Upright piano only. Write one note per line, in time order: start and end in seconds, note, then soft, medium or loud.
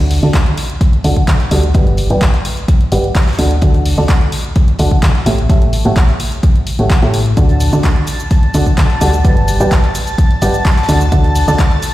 0.00 0.20 D3 medium
0.00 0.20 F#4 medium
0.00 0.20 A4 medium
0.00 0.20 D5 medium
0.00 0.20 F#5 medium
0.23 0.32 D3 medium
0.23 0.32 F#4 medium
0.23 0.32 A4 medium
0.23 0.32 D5 medium
0.23 0.32 A5 loud
1.04 1.14 D3 medium
1.04 1.14 F#4 medium
1.04 1.14 A4 medium
1.04 1.14 D5 medium
1.04 1.14 F#5 medium
1.51 1.61 G3 medium
1.51 1.61 F#4 medium
1.51 1.61 A4 medium
1.51 1.61 D5 medium
1.51 1.61 F#5 medium
1.75 2.07 G3 medium
1.75 2.07 G4 medium
1.75 2.07 B4 medium
1.75 2.07 D5 medium
1.75 2.07 F#5 medium
2.10 2.19 G3 medium
2.10 2.19 G4 medium
2.10 2.19 B4 medium
2.10 2.19 D5 medium
2.10 2.19 G5 loud
2.92 3.02 G3 medium
2.92 3.02 G4 medium
2.92 3.02 B4 medium
2.92 3.02 D5 medium
2.92 3.02 F#5 medium
3.39 3.48 D3 medium
3.39 3.48 F#4 medium
3.39 3.48 A4 medium
3.39 3.48 D5 medium
3.39 3.48 F#5 medium
3.62 3.95 D3 medium
3.62 3.95 F#4 medium
3.62 3.95 A4 medium
3.62 3.95 D5 medium
3.62 3.95 F#5 medium
3.98 4.07 D3 medium
3.98 4.07 F#4 medium
3.98 4.07 A4 medium
3.98 4.07 D5 medium
3.98 4.07 A5 loud
4.79 4.89 D3 medium
4.79 4.89 F#4 medium
4.79 4.89 A4 medium
4.79 4.89 D5 medium
4.79 4.89 F#5 loud
5.26 5.36 A3 medium
5.26 5.36 G4 medium
5.26 5.36 A4 medium
5.26 5.36 C#5 medium
5.26 5.36 E5 medium
5.49 5.82 A3 medium
5.49 5.82 G4 medium
5.49 5.82 A4 medium
5.49 5.82 C#5 medium
5.49 5.82 E5 medium
5.85 5.94 A3 medium
5.85 5.94 G4 medium
5.85 5.94 A4 medium
5.85 5.94 C#5 medium
5.85 5.94 F#5 loud
6.79 6.88 A3 medium
6.79 6.88 G4 medium
6.79 6.88 A4 medium
6.79 6.88 C#5 medium
6.79 6.88 F#5 medium
7.02 7.17 A3 medium
7.02 7.17 G4 medium
7.02 7.17 A4 medium
7.02 7.17 C#5 medium
7.02 7.17 E5 loud
7.37 7.70 D3 medium
7.37 7.70 F#4 medium
7.37 7.70 A4 medium
7.37 7.70 D5 medium
7.37 7.70 F#5 medium
7.73 7.82 D3 medium
7.73 7.82 F#4 medium
7.73 7.82 A4 medium
7.73 7.82 D5 medium
7.73 7.82 A5 loud
8.54 8.64 D3 medium
8.54 8.64 F#4 medium
8.54 8.64 A4 medium
8.54 8.64 D5 medium
8.54 8.64 F#5 loud
9.01 9.11 G3 medium
9.01 9.11 F#4 medium
9.01 9.11 A4 medium
9.01 9.11 D5 medium
9.01 9.11 F#5 medium
9.25 9.57 G3 medium
9.25 9.57 G4 medium
9.25 9.57 B4 medium
9.25 9.57 D5 medium
9.25 9.57 F#5 medium
9.60 9.69 G3 medium
9.60 9.69 G4 medium
9.60 9.69 B4 medium
9.60 9.69 D5 medium
9.60 9.69 G5 loud
10.42 10.52 G3 medium
10.42 10.52 G4 medium
10.42 10.52 B4 medium
10.42 10.52 D5 medium
10.42 10.52 F#5 loud
10.89 10.98 D3 medium
10.89 10.98 F#4 medium
10.89 10.98 A4 medium
10.89 10.98 D5 medium
10.89 10.98 F#5 medium
11.12 11.45 D3 medium
11.12 11.45 F#4 medium
11.12 11.45 A4 medium
11.12 11.45 D5 medium
11.12 11.45 F#5 medium
11.48 11.57 D3 medium
11.48 11.57 F#4 medium
11.48 11.57 A4 medium
11.48 11.57 D5 medium
11.48 11.57 A5 loud